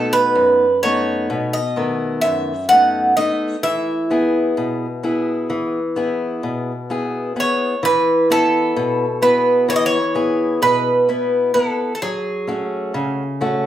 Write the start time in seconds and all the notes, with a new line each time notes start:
Already playing: B2 A3 B3 D#4 A4
0.13 B4
0.35 F#2
0.83 A3 B3 D#4 C#5
1.30 B2
1.53 D#5
1.76 D#3 A3 B3
2.21 F#2 E5
2.69 A3 B3 D#4 F#5
3.17 A3 B3 D#4 D#5
3.63 E3 E5
4.11 B3 E4 G#4
4.57 B2
5.03 B3 E4 G#4
5.50 E3
5.96 B3 E4 G#4
6.43 B2
6.90 B3 E4 G#4
7.36 B3 E4 G#4 C#5
7.83 E3 B4
8.30 B3 E4 A4 B4
8.76 B2
9.22 B3 E4 G#4 B4
9.69 E3 C#5
9.76 D#5
9.86 C#5
10.15 B3 E4 G#4
10.62 B2 B4
11.09 B3 E4 B4
11.54 B3 E4 A4
11.95 A4
12.02 F#3 G#4
12.47 A3 C#4 F#4
12.94 C#3
13.41 A3 C#4 F#4